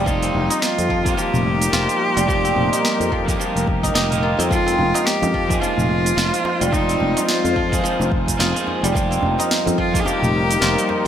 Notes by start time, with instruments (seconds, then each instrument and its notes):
Already playing: fretless electric bass F1, guzheng G3 C4 D#4 F4, string section C4 F4 C5
0.04 clean electric guitar F3 A#3 D#4, guzheng F3, string section G3, cello D#4, kick, shaker
0.08 clean electric guitar G4
0.23 string section A#3, guzheng C4, open hi-hat, shaker
0.34 fretless electric bass F1
0.50 guzheng D#4, open hi-hat, shaker
0.62 cello F4, snare, shaker
0.78 fretless electric bass F2, open hi-hat, shaker
0.89 guzheng F3, kick
1.04 clean electric guitar F3 A#3 D#4 G4, kick, open hi-hat, shaker
1.09 string section D#4
1.17 guzheng F3, cello G4, shaker
1.34 fretless electric bass F1, mid tom, shaker
1.47 string section A#4
1.62 open hi-hat, shaker
1.72 fretless electric bass F1, clean electric guitar F3 A#3 D#4 C5, guzheng F4, snare, shaker
1.89 open hi-hat, shaker
2.17 fretless electric bass F1, guzheng G3, open hi-hat, shaker
2.26 clean electric guitar F3 A#3 D#4 C5, guzheng F3, kick, shaker
2.45 guzheng C4, open hi-hat, shaker
2.56 fretless electric bass F1, mid tom
2.73 guzheng D#4, open hi-hat, shaker
2.85 snare, shaker
3.00 fretless electric bass F2, open hi-hat, shaker
3.12 guzheng F3, kick
3.26 clean electric guitar F3 A#3 D#4, kick, open hi-hat, shaker
3.30 clean electric guitar G4
3.40 guzheng F3, shaker
3.55 fretless electric bass F1, open hi-hat, shaker
3.67 kick
3.83 guzheng D#4, kick, open hi-hat, shaker
3.94 fretless electric bass F1, clean electric guitar F3 A#3 D#4 G4, guzheng D#4, snare, shaker
4.10 clean electric guitar F3 A#3 D#4 G4, mid tom, open hi-hat, shaker
4.23 guzheng F4
4.39 fretless electric bass F2, guzheng C4, open hi-hat, shaker
4.48 clean electric guitar F3 A#3 D#4, guzheng F3, string section G#3, cello F4, kick, shaker
4.52 clean electric guitar G#3
4.66 guzheng C4, open hi-hat, shaker
4.79 fretless electric bass F1, djembe bass
4.94 guzheng D#4, string section F4, open hi-hat, djembe slap, shaker
5.06 cello G4, snare, shaker
5.14 string section C4
5.22 fretless electric bass F2, open hi-hat, djembe slap, djembe bass, shaker
5.34 guzheng F3, kick
5.48 clean electric guitar F3 A#3 D#4, kick, open hi-hat, shaker
5.52 clean electric guitar G#4
5.61 guzheng F3, cello F4, djembe tone, shaker
5.77 fretless electric bass F1, mid tom, shaker
5.99 string section C5
6.06 open hi-hat, shaker
6.16 fretless electric bass F1, clean electric guitar F3 A#3 D#4 C5, guzheng F4, snare, shaker
6.34 open hi-hat, shaker
6.44 djembe slap, djembe tone
6.61 fretless electric bass F1, guzheng G3, open hi-hat, shaker
6.71 clean electric guitar F3 A#3 D#4, guzheng F3, cello D#4, kick, shaker
6.75 clean electric guitar C5
6.89 guzheng C4, open hi-hat, shaker
7.00 fretless electric bass F1, djembe bass
7.17 guzheng D#4, open hi-hat, djembe slap, shaker
7.28 cello F4, snare, shaker
7.44 fretless electric bass F2, open hi-hat, djembe slap, shaker
7.56 guzheng F3, kick
7.69 clean electric guitar F3 A#3 D#4, kick, open hi-hat
7.74 clean electric guitar G#4, shaker
7.84 guzheng F3, shaker
8.00 fretless electric bass F1, djembe tone, shaker
8.12 kick
8.28 kick, open hi-hat, shaker
8.37 fretless electric bass F1, clean electric guitar F3 A#3 D#4 G#4, guzheng F4, snare, shaker
8.54 clean electric guitar F3 A#3 D#4 G#4, open hi-hat, djembe tone, shaker
8.67 djembe tone
8.83 fretless electric bass F1, guzheng G3, open hi-hat, djembe tone, shaker
8.92 clean electric guitar F3 A#3 D#4 G4, guzheng F3, string section G3, kick
8.97 shaker
9.11 guzheng C4, open hi-hat, shaker
9.19 fretless electric bass F1, string section A#3, djembe bass
9.39 guzheng D#4, string section A#4, open hi-hat, djembe slap, shaker
9.51 snare, shaker
9.60 string section D#4
9.66 fretless electric bass F2, open hi-hat, djembe slap, djembe bass, shaker
9.78 guzheng F3, cello F4, kick
9.92 clean electric guitar F3 A#3 D#4, kick, open hi-hat
9.96 clean electric guitar G4, cello G#4, shaker
10.05 guzheng F3, cello G4, djembe tone, shaker
10.22 fretless electric bass F1, mid tom, shaker
10.51 open hi-hat, shaker
10.60 fretless electric bass F1, clean electric guitar F3 A#3 D#4 C5, guzheng F4, snare, shaker
10.78 open hi-hat, shaker
10.89 djembe slap, djembe tone